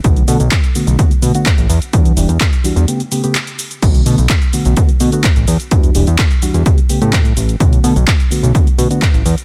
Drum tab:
CC |----------------|----------------|x---------------|----------------|
HH |xxoxxxoxxxoxxxox|xxoxxxoxxxoxxxox|xxoxxxoxxxoxxxox|xxoxxxoxxxoxxxox|
SH |xxxxxxxxxxxxxxxx|xxxxxxxxxxxxxxxx|xxxxxxxxxxxxxxxx|xxxxxxxxxxxxxxxx|
CP |----x-------x---|----x-------x---|----x-------x---|----x-------x---|
BD |o---o---o---o---|o---o-----------|o---o---o---o---|o---o---o---o---|

CC |----------------|
HH |xxoxxxoxxxoxxxox|
SH |xxxxxxxxxxxxxxxx|
CP |----x-------x---|
BD |o---o---o---o---|